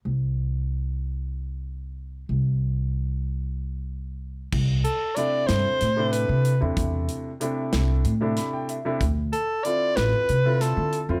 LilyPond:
<<
  \new Staff \with { instrumentName = "Soprano saxophone" } { \time 7/8 \key c \major \tempo 4 = 94 r2. r8 | r2. r8 | r8 a'8 d''8 c''4 b'8. r16 | r2. r8 |
r8 a'8 d''8 b'4 a'8. r16 | }
  \new Staff \with { instrumentName = "Grand piano" } { \time 7/8 \key c \major << { r2. r8 | r2. r8 | r2. r8 | r2 r8 b''16 g''16 e''8 |
r2. r8 | } \\ { r2. r8 | r2. r8 | r4 <c a d' e'>4 r16 <c a d' e'>8. r16 <c a d' e'>16~ | <c a d' e'>8. r16 <c a d' e'>4 r16 <c a d' e'>8. r16 <c a d' e'>16 |
r4 <d c' e' f'>4 r16 <d c' e' f'>8. r16 <d c' e' f'>16 | } >> }
  \new Staff \with { instrumentName = "Upright bass" } { \clef bass \time 7/8 \key c \major c,2.~ c,8 | c,2.~ c,8 | c,8 r4 g,16 r16 a,8. c8 e,16 | e,8 r4 c,8 a,8 r4 |
d,8 r4 a,,16 r16 c8. d8 f,16 | }
  \new DrumStaff \with { instrumentName = "Drums" } \drummode { \time 7/8 r4. r4 r4 | r4. r4 r4 | <cymc bd>8 hh8 hh8 <hh sn>8 <hh sn>8 hh8 hh8 | <hh bd>8 hh8 hh8 <hh sn>8 hh8 <hh sn>8 hh8 |
<hh bd>8 hh8 hh8 <hh sn>8 hh8 <hh sn>8 hh8 | }
>>